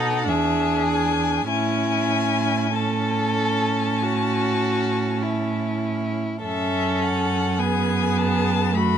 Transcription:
Already playing: B2 D#4 A4 F#5
0.28 E2 D4 G#4 E5
0.86 G#5
1.48 A2 C#4 E4 G#5
2.75 C#4 A4 A5
4.02 F#4
5.22 E4
6.42 F#2 C#4 A4 E5
7.02 F#5
7.58 B3 G#4 G#5
8.17 A5
8.73 A3 F#4 B5

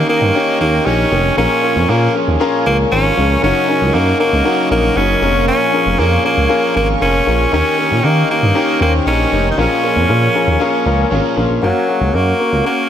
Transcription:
Already playing: D#3 A#3 C#4 D#4 G4 A#4 C#5 D#5 G5 C#6
0.08 A#3 C#4 D#4 G4 A#4
0.21 G2
0.34 D#3 A#3 C#4 D#4 G4 C#5
0.60 D#2 A#3 C#4 D#4 G4 A#4
0.85 A#1 D#3 A#3 C#4 D#4 G4 A#4
1.11 F1 C#4 D#4 G4 A#4
1.36 A#1 A#2 F3 A#3 C#4 F4 G#4 A#4 F5 G#5 C#6
1.62 C#4 F4 G#4 A#4
1.76 F2
1.88 A#2 F3 A#3 C#4 F4 G#4 A#4
2.14 C#4 F4 G#4 A#4
2.28 D#2
2.39 A#2 F3 A#3 C#4 F4 G#4 A#4
2.65 C#2 A#3 C#4 F4 G#4 A#4
2.90 G#1 A#2 F3 A#3 C#4 F4 G#4 A#4
3.17 C#2 C#4 F4 G#4 A#4
3.42 F#1 F#2 C#3 F#3 C#4 D#4 F#4 A#4 D#5 F#5
3.68 C#4 D#4 F#4 A#4
3.81 C#2
3.93 F#2 C#3 F#3 A#3 C#4 D#4 F#4 A#4
4.19 A#3 C#4 D#4 F#4 A#4
4.33 C#2
4.44 F#2 C#3 F#3 C#4 D#4 F#4 A#4
4.70 A#1 A#3 C#4 D#4 F#4 A#4
4.96 F#1 F#2 C#3 F#3 C#4 D#4 F#4 G#4
5.21 F1 A#2 F3 A#3 C#4 F4 G#4 A#4 F5 G#5
5.48 C#4
5.73 C#4 F4 G#4 A#4
5.86 F1
5.98 F2 A#2 F3 A#3 C#4 F4 G#4 A#4
6.24 A#3 C#4 F4 G#4 A#4
6.37 C#2
6.49 A#2 F3 A#3 C#4 F4 G#4 A#4
6.74 G#1 A#3 C#4 F4 G#4 A#4
7.00 F1 A#2 F3 A#3 C#4 F4 G#4 A#4
7.26 A#1 C#4 F4 G#4 A#4
7.52 D#2 D#3 A#3 C#4 D#4 G4 A#4 D#5 G5
7.78 C#4 D#4 G4 A#4
7.91 A#2
8.03 D#3 A#3 C#4 D#4 G4 A#4
8.29 A#3 C#4 D#4 G4 A#4
8.42 G2
8.54 D#3 A#3 C#4 D#4 G4 A#4
8.80 D#2 A#3 C#4 D#4 G4 C5
9.06 A#1 D#3 A#3 C#4 D#4 G4 A#4
9.32 F1 C#4 D#4 G4 A#4
9.51 D#4
9.57 A#1 A#2 F3 A#3 C#4 F4 G#4 A#4 F5 G#5
9.83 C#4 F4 G#4 A#4
9.96 F2
10.09 A#2 C#4 F4 G#4 A#4
10.34 C#4 F4 G#4 A#4
10.47 D#2
10.59 A#2 F3 A#3 C#4 F4 G#4 A#4
10.85 C#2 C#4 F4 G#4 A#4
11.10 G#1 A#2 F3 A#3 C#4 F4 G#4 A#4
11.36 A#1 C#4 F4 G#4 A#4
11.50 A#1
11.62 F#1 F#3 A#3 C#4 F#4 A#4 C#5 F#5 C#6
11.88 A#3 C#4 F#4 G#4
12.01 C#2
12.13 F#2 A#3 C#4 F#4 A#4
12.39 A#3 C#4 F#4 A#4
12.52 C#2
12.64 A#3 C#4 F#4 A#4

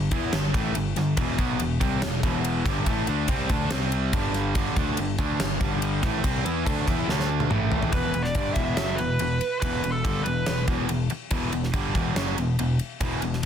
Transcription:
Already playing: G1
0.11 E2 E3 B3 E4, kick, ride
0.32 G1 G2 D3, snare, ride
0.54 A1 A2 E3 A3, kick, ride
0.74 G1 G2 D3, ride
0.96 G1 G2 D3, snare, ride
1.17 E1 E2 B2 E3, kick, ride
1.38 B1 B2 F#3 B3, kick, ride
1.59 E1 E2 B2, ride
1.80 C2 C3 G3 C4, kick, ride
2.02 E1 E2 B2, snare, ride
2.23 E1 E2 B2 E3, kick, ride
2.45 ride
2.66 G1 G2 D3 G3, kick, snare, ride
2.86 A1 A2 E3 A3, kick, ride
3.07 D2 D3 A3 D4, ride
3.28 C2 C3 G3 C4, kick, ride
3.49 D2 D3 A3 D4, kick, ride
3.71 C2 C3 G3 C4, snare, ride
3.92 ride
4.13 G1 G2 D3 G3, kick, ride
4.34 snare, ride
4.55 G1 G2 D3 G3, kick, ride
4.76 D2 D3 A3 D4, kick, ride
4.97 G1 G2 D3, ride
5.18 D2 D3 A3 D4, kick, ride
5.40 G1 G2 D3, snare, ride
5.60 G1 G2 D3 G3, kick, ride
5.82 ride
6.03 A1 A2 E3 A3, kick, snare, ride
6.24 C2 C3 G3 C4, kick, ride
6.45 E2 E3 B3 E4, ride
6.66 D2 D3 A3 D4, kick, ride
6.87 E2 E3 B3 E4, kick, ride
7.08 D2 D3 A3 D4, snare
7.20 snare
7.40 high tom
7.50 A1 A2 E3 A3, mid tom
7.72 floor tom
7.83 floor tom
7.92 E1 E2 B2 E3 B4, kick, ride
8.14 E1 E2 B2, ride
8.23 D5, snare
8.35 G1 G2 D3 G3, kick, ride
8.54 E1 E2 B2 E3 E5, kick, ride
8.75 F#1 F#2 C#3 E5, snare, ride
8.79 F#3
8.95 E1 E2 B4, ride
9.00 B2
9.19 E1 E2 B2, ride
9.41 ride
9.60 E1 E2 B4, kick, ride
9.65 B2 E3
9.83 E1 E2 B2, ride
9.92 A4
10.05 G1 G2 D3 G3, kick, ride
10.24 E1 E2 B2 B4, ride
10.46 E1 E2 B2, snare, ride
10.68 E1 E2 B2 E3, kick, ride
10.89 E1 E2 B2, ride
11.10 muted picked electric bass stroke, muted distorted electric guitar stroke, ride
11.31 E1 E2 B2 E3, kick, ride
11.52 E1 E2 B2, ride
11.64 snare
11.73 G1 G2 D3 G3, kick, ride
11.95 E1 E2 B2 E3, kick, ride
12.15 F#1 F#2 C#3 F#3, snare, ride
12.37 E1 E2 B2, ride
12.59 E1 E2 B2, ride
12.79 ride
13.00 E1 E2 B2 E3, kick, ride
13.22 E1 E2 B2, ride
13.33 snare

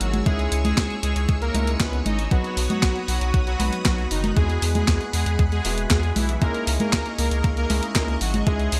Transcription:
Already playing: G#3 C#4 D#4 E4 G#4 C#5 C#6 E6
0.01 G#1 F#3 F#4, closed hi-hat
0.14 closed hi-hat, high conga
0.26 C#2 G#3 C#4 D#4 E4 G#4, kick, closed hi-hat
0.39 closed hi-hat
0.52 C#2, closed hi-hat
0.65 G#3 G#4, closed hi-hat, high conga
0.77 C#2, kick, snare, clap, closed hi-hat
0.90 closed hi-hat
1.03 C#2 G#3 G#4, closed hi-hat
1.16 C#2, closed hi-hat
1.29 C#2, kick, closed hi-hat
1.42 A#3 A#4, closed hi-hat
1.54 C#2 G#3 C#4 D#4 E4, closed hi-hat, high conga
1.67 closed hi-hat
1.80 C#2 B3 B4, kick, snare, clap, closed hi-hat
1.93 closed hi-hat
2.06 G#1 D#4 D#5, closed hi-hat, high conga
2.19 closed hi-hat
2.31 B1 F#3 B3 D#4 F#4 B4 B5 D#6, kick, closed hi-hat
2.44 closed hi-hat
2.57 B1, open hi-hat
2.70 F#3 F#4, closed hi-hat, high conga
2.83 B1, kick, snare, clap, closed hi-hat
2.96 closed hi-hat
3.08 B1 F#3 F#4, open hi-hat
3.21 B1, closed hi-hat
3.34 B1, kick, closed hi-hat
3.47 F#3 F#4, closed hi-hat
3.60 B1 B3 D#4 F#4 B4, open hi-hat, high conga
3.73 closed hi-hat
3.85 B1 F#3 F#4, kick, snare, clap, closed hi-hat
3.98 closed hi-hat
4.11 F#1 D#3 D#4, open hi-hat
4.24 closed hi-hat, high conga
4.37 E2 G#3 B3 E4 F#4 G#4 F#5, kick, closed hi-hat
4.50 closed hi-hat
4.62 E2, open hi-hat
4.75 G#3 G#4, closed hi-hat, high conga
4.88 E2, kick, snare, clap, closed hi-hat
5.01 closed hi-hat
5.13 E2 G#3 G#4, open hi-hat
5.26 E2, closed hi-hat
5.39 E2, kick, closed hi-hat
5.52 G#3 G#4, closed hi-hat
5.65 E1 G#3 B3 E4 F#4, open hi-hat
5.78 closed hi-hat
5.90 E2 G#3 G#4, kick, snare, clap, closed hi-hat
6.03 closed hi-hat
6.16 B1 E3 E4, open hi-hat, high conga
6.29 closed hi-hat
6.42 C#2 G#3 A#3 C#4 D#4 E4 A#4 D#5 C#6, kick, closed hi-hat
6.54 closed hi-hat
6.67 C#2, open hi-hat
6.80 A#3 A#4, closed hi-hat, high conga
6.93 C#2, kick, snare, clap, closed hi-hat
7.06 closed hi-hat
7.18 C#2 A#3 A#4, open hi-hat
7.31 C#2, closed hi-hat
7.44 C#2, kick, closed hi-hat
7.57 A#3 A#4, closed hi-hat
7.70 C#2 G#3 C#4 D#4 E4, open hi-hat, high conga
7.83 closed hi-hat
7.95 C#2 A#3 A#4, kick, snare, clap, closed hi-hat
8.08 closed hi-hat
8.21 G#1 F#3 F#4, open hi-hat
8.34 closed hi-hat, high conga
8.47 C#2 G#3 C#4 D#4 E4 G#4, kick, closed hi-hat
8.59 closed hi-hat
8.72 C#2, open hi-hat

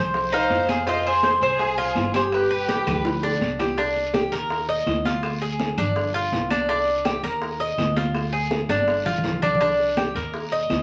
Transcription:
Already playing: C2 C5
0.14 high bongo, high conga, long guiro
0.32 D#4 C5 F5, high bongo, high conga
0.50 F2, high bongo, low bongo, high conga, short guiro
0.69 G#4, high bongo, high conga, short guiro, claves
0.87 F4 C5 D#5, high bongo, high conga, long guiro
1.05 G#4 C5, high bongo, high conga
1.23 C5, high bongo, high conga, short guiro, claves
1.41 C2 G#4 C5, high conga, short guiro
1.59 G#4, high bongo, high conga, long guiro
1.77 F4, high bongo, high conga
1.95 G1, high bongo, low bongo, high conga, short guiro, claves
2.14 G4 G#4 C5, high bongo, high conga, short guiro
2.32 G4 B4, high bongo, high conga, long guiro, claves
2.50 B4, high bongo, high conga
2.68 G4, high bongo, high conga, short guiro
2.86 D2 B4, high bongo, low conga, short guiro, claves
3.05 low bongo, high conga, long guiro
3.23 D4, high bongo, high conga
3.41 C2, high conga, short guiro
3.59 G4, low bongo, high conga, short guiro, claves
3.78 D4, high bongo, long guiro
3.96 high bongo, high conga
4.14 G4, high bongo, high conga, short guiro, claves
4.32 D#2 A#4, high conga, short guiro
4.50 high bongo, high conga, long guiro
4.68 D#5, high bongo, high conga
4.86 D2, high bongo, low bongo, high conga, short guiro, claves
5.05 F4, high bongo, high conga, short guiro
5.23 high bongo, high conga, long guiro, claves
5.41 G#4, high bongo, high conga
5.59 high bongo, high conga, short guiro
5.77 G1 D4, low conga, short guiro, claves
5.96 high bongo, high conga, long guiro
6.14 F4, high bongo, high conga
6.32 C2, high bongo, low bongo, high conga, short guiro
6.50 D4, high bongo, high conga, short guiro, claves
6.69 D4, high bongo, long guiro
6.87 high bongo, high conga
7.05 G4, high bongo, high conga, short guiro, claves
7.23 D#2 A#4, high conga, short guiro
7.42 high bongo, high conga, long guiro
7.60 D#5, high bongo, high conga
7.78 D2, high bongo, low bongo, high conga, short guiro, claves
7.96 F4, high bongo, high conga, short guiro
8.15 high bongo, high conga, long guiro, claves
8.33 G#4, high bongo, high conga
8.51 high bongo, high conga, short guiro
8.69 G1 D4, high conga, short guiro, claves
8.81 high conga
8.87 high bongo, long guiro
9.06 F4, high bongo, low conga
9.18 low conga
9.24 C2, high bongo, low bongo, short guiro
9.30 low conga
9.42 D4, high bongo, low conga, short guiro, claves
9.55 low conga
9.61 D4, high bongo, high conga, long guiro
9.79 high bongo, high conga
9.97 G4, high bongo, high conga, short guiro, claves
10.15 D#2 A#4, high conga, short guiro
10.34 high bongo, high conga, long guiro
10.52 D#5, high bongo, high conga
10.70 D2, high bongo, low bongo, high conga, short guiro, claves

